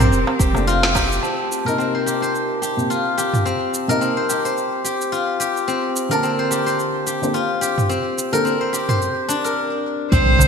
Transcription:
0.00 0.11 A#1 loud
0.00 0.67 C4 loud
0.00 1.22 C4 medium
0.00 0.67 F4 medium
0.00 0.39 G4 medium
0.00 1.56 A#4 loud
0.00 1.94 C5 medium
0.00 shaker soft
0.12 0.25 F1 loud
0.12 shaker soft
0.27 darbuka tek medium
0.39 1.19 F1 medium
0.39 0.95 G4 medium
0.39 kick loud
0.39 darbuka ka medium
0.39 shaker medium
0.53 1.20 C3 medium
0.53 1.21 A3 medium
0.53 darbuka tek medium
0.53 shaker soft
0.57 1.22 D4 loud
0.67 2.90 F4 medium
0.67 shaker soft
0.83 snare medium
0.83 darbuka ka medium
0.95 2.06 G4 loud
0.95 kick medium
0.95 darbuka tek medium
0.95 shaker medium
1.12 shaker soft
1.23 1.78 C4 medium
1.23 9.56 A5 medium
1.23 shaker soft
1.52 shaker medium
1.65 2.73 C3 medium
1.65 2.74 A#3 medium
1.65 3.78 A#4 medium
1.65 shaker soft
1.69 2.75 D#4 medium
1.78 3.45 C4 medium
1.78 shaker soft
1.95 2.22 C5 medium
2.06 2.61 G4 medium
2.06 shaker medium
2.22 4.16 C5 medium
2.22 shaker soft
2.35 shaker soft
2.62 3.17 G4 medium
2.62 shaker medium
2.77 2.87 C3 medium
2.77 2.88 A#3 medium
2.77 2.88 G4 medium
2.77 shaker soft
2.90 5.12 F4 medium
2.90 shaker soft
3.18 4.29 G4 medium
3.18 shaker medium
3.34 mid tom medium
3.34 shaker soft
3.45 4.01 C4 medium
3.45 shaker soft
3.74 shaker medium
3.88 4.06 C3 medium
3.88 4.06 A#3 medium
3.88 4.07 D#4 medium
3.88 6.01 A#4 medium
3.88 shaker soft
4.01 5.67 C4 medium
4.01 shaker soft
4.17 4.45 C5 medium
4.29 4.84 G4 medium
4.29 shaker medium
4.45 6.38 C5 medium
4.45 shaker soft
4.57 shaker soft
4.84 5.39 G4 medium
4.84 shaker medium
5.01 shaker soft
5.12 7.34 F4 medium
5.12 shaker soft
5.40 6.50 G4 medium
5.40 shaker medium
5.57 shaker soft
5.68 6.23 C4 medium
5.68 shaker soft
5.96 shaker medium
6.09 7.17 D3 medium
6.09 7.18 A#3 medium
6.09 7.19 C4 medium
6.09 8.23 A#4 medium
6.09 shaker soft
6.13 7.19 A5 medium
6.23 7.89 C4 medium
6.23 shaker soft
6.39 6.66 C5 medium
6.51 7.06 G4 medium
6.51 shaker medium
6.66 8.60 C5 medium
6.66 shaker soft
6.79 shaker soft
7.07 7.61 G4 medium
7.07 shaker medium
7.21 7.32 D3 medium
7.21 7.32 A#3 medium
7.21 7.33 C4 medium
7.21 7.33 C5 medium
7.21 shaker soft
7.34 9.86 F4 medium
7.34 shaker soft
7.61 8.72 G4 medium
7.61 shaker medium
7.78 mid tom soft
7.78 shaker soft
7.89 8.44 C4 medium
7.89 shaker soft
8.18 shaker medium
8.32 8.51 D3 medium
8.32 8.51 A#3 medium
8.32 8.51 C4 medium
8.32 8.52 A4 medium
8.32 9.44 A#4 medium
8.32 shaker soft
8.45 10.12 C4 medium
8.45 shaker soft
8.61 8.88 C5 medium
8.73 10.48 G4 medium
8.73 shaker medium
8.89 10.48 C5 medium
8.89 mid tom soft
8.89 shaker soft
9.02 shaker soft
9.29 10.48 D4 medium
9.29 shaker medium
9.44 10.48 A#4 medium
9.44 shaker soft
10.11 10.48 C2 medium
10.11 10.48 C4 medium
10.11 10.48 C5 medium
10.11 kick loud
10.11 impact medium
10.11 shaker soft
10.39 darbuka tek soft
10.39 darbuka dum medium
10.39 shaker medium

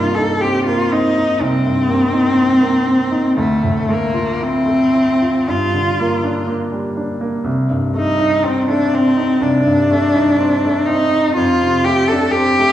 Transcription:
0.00 1.37 C2 medium
0.00 1.66 G2 soft
0.00 0.32 A#3 soft
0.00 0.16 F4 medium
0.15 0.57 D#4 soft
0.15 0.42 A4 medium
0.41 0.83 C4 soft
0.41 0.66 G4 medium
0.67 1.07 A#3 soft
0.67 0.94 F4 medium
0.92 1.32 C4 soft
0.92 1.44 D#4 medium
1.17 1.56 D#4 soft
1.40 3.34 C2 soft
1.40 3.38 C4 medium
1.66 2.04 G2 soft
1.88 2.27 A#3 soft
2.13 2.53 D#4 soft
2.37 2.77 C4 soft
2.61 3.02 A#3 soft
2.87 3.28 C4 soft
3.11 3.38 D#4 soft
3.37 5.44 D2 medium
3.37 3.92 A3 medium
3.64 4.04 A2 soft
3.89 4.30 A3 soft
3.89 4.45 A#3 medium
4.14 4.56 F4 soft
4.40 5.51 C4 medium
4.40 4.83 E4 soft
4.66 5.10 A3 soft
4.94 5.38 E4 soft
5.22 5.49 F4 soft
5.48 7.42 G2 medium
5.48 6.50 F4 medium
5.74 6.14 D3 soft
6.00 6.39 A#3 soft
6.24 6.63 D4 soft
6.48 6.87 A#3 soft
6.72 7.12 G3 soft
6.97 7.36 D4 soft
7.21 7.46 A#3 soft
7.44 9.37 C2 medium
7.70 8.10 G2 soft
7.94 8.34 A3 soft
7.94 8.46 D#4 medium
8.19 8.59 D#4 soft
8.44 8.83 C4 soft
8.44 8.69 C4 medium
8.69 9.08 A3 soft
8.69 8.96 D4 medium
8.94 9.32 C4 soft
8.94 9.44 C4 medium
9.17 9.56 D#4 soft
9.41 11.30 C2 soft
9.41 10.88 D4 medium
9.66 10.05 G2 soft
9.91 10.29 A3 soft
10.15 10.53 D#4 soft
10.39 10.77 C4 soft
10.65 11.02 A3 soft
10.86 11.26 C4 soft
10.86 11.35 D#4 medium
11.12 11.36 D#4 soft
11.36 12.72 F2 medium
11.36 11.86 F4 medium
11.62 12.00 C3 soft
11.85 12.24 A3 soft
11.85 12.10 G4 medium
12.08 12.49 D4 medium
12.08 12.33 A4 medium
12.31 12.72 G4 medium
12.36 12.72 C4 soft
12.60 12.72 A3 soft

